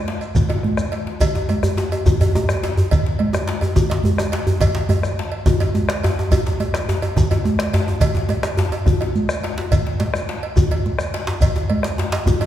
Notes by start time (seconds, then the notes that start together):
0.08 djembe slap, high conga
0.21 cowbell, shekere
0.35 bombo low, djembe slap, djembe bass, low conga, shekere
0.49 bombo rim, cowbell, djembe slap, djembe tone
0.63 bombo rim, high conga, djembe bass
0.77 bombo rim, high conga, djembe bass, shekere
0.92 cowbell, djembe slap, shekere
1.07 djembe slap, high conga
1.21 bombo low, cowbell, djembe slap, djembe tone, djembe bass, low conga, shekere
1.35 djembe slap, djembe tone
1.49 bombo rim, cowbell, djembe tone, high conga
1.63 bombo rim, djembe slap, djembe tone, djembe bass, shekere
1.77 djembe slap, djembe tone
1.92 cowbell, djembe tone
2.06 bombo rim, bombo low, djembe tone, high conga, djembe bass, low conga, shekere
2.21 cowbell, djembe slap, djembe tone, high conga, djembe bass
2.35 djembe tone, high conga, shekere
2.49 bombo rim, djembe tone, shekere
2.63 cowbell, djembe slap, djembe tone
2.77 djembe tone, djembe bass
2.91 bombo low, cowbell, djembe slap, djembe bass, low conga, shekere
3.06 djembe slap
3.19 bombo rim, cowbell, high conga
3.33 bombo rim, djembe slap, djembe tone, shekere
3.35 djembe tone
3.47 djembe slap
3.61 cowbell, djembe bass
3.76 bombo rim, bombo low, high conga, djembe tone, low conga, djembe bass, shekere
3.90 cowbell, djembe slap, high conga, djembe tone
4.04 high conga, djembe bass
4.18 bombo rim, djembe tone, shekere
4.32 cowbell, djembe slap
4.47 djembe tone, djembe bass
4.60 bombo low, cowbell, djembe slap, djembe tone, low conga, djembe bass, shekere
4.75 djembe slap
4.76 djembe slap
4.89 bombo rim, cowbell, high conga, djembe bass
5.03 bombo rim, djembe slap, djembe tone, shekere
5.19 djembe slap
5.32 cowbell
5.46 bombo rim, bombo low, high conga, djembe tone, low conga, djembe bass, shekere
5.60 cowbell, djembe slap, high conga, djembe tone
5.75 high conga, djembe tone, shekere
5.89 bombo rim, djembe slap, shekere
6.04 cowbell, djembe slap, djembe bass
6.19 djembe tone
6.31 bombo low, cowbell, high conga, djembe tone, low conga, djembe bass, shekere
6.47 djembe slap, high conga, djembe tone
6.60 bombo rim, cowbell, high conga, djembe tone
6.74 bombo rim, djembe slap, djembe tone, shekere
6.89 djembe slap, djembe bass, shekere
7.02 bombo rim, cowbell, djembe slap, djembe tone, high conga
7.16 bombo rim, bombo low, djembe slap, djembe tone, low conga, djembe bass, shekere
7.31 cowbell, djembe slap, high conga, djembe tone
7.44 bombo rim, high conga, djembe tone, shekere
7.59 bombo rim, djembe slap, shekere
7.73 cowbell, djembe slap, djembe bass
7.87 bombo rim, djembe tone
8.00 bombo low, cowbell, djembe slap, djembe tone, low conga, djembe bass, shekere
8.15 djembe slap, djembe tone
8.29 bombo rim, cowbell, djembe tone, high conga
8.43 bombo rim, djembe slap, shekere
8.45 djembe slap, djembe tone
8.57 djembe slap, djembe bass
8.72 cowbell, djembe tone
8.86 bombo rim, bombo low, high conga, low conga, djembe bass, shekere
9.01 cowbell, djembe slap, high conga, djembe tone
9.15 high conga, shekere
9.29 bombo rim, shekere
9.44 cowbell, djembe slap
9.58 djembe slap, djembe tone
9.71 bombo low, cowbell, djembe slap, low conga, djembe bass, shekere
9.86 djembe slap
10.00 bombo rim, cowbell, djembe slap, high conga
10.14 bombo rim, djembe slap, djembe tone, shekere
10.29 djembe slap
10.43 cowbell
10.56 bombo rim, bombo low, high conga, djembe bass, low conga, shekere
10.71 cowbell, djembe slap, djembe tone, high conga
10.85 high conga, shekere
10.99 bombo rim, shekere
11.14 cowbell, djembe slap
11.27 djembe slap, djembe tone
11.41 bombo low, cowbell, djembe slap, low conga, djembe bass, shekere
11.56 djembe slap, djembe tone
11.69 bombo rim, cowbell, high conga
11.83 bombo rim, djembe slap, djembe tone, shekere
11.98 djembe slap, djembe tone
12.12 cowbell, djembe slap
12.26 bombo rim, bombo low, high conga, djembe bass, low conga, shekere
12.41 cowbell, djembe slap, djembe tone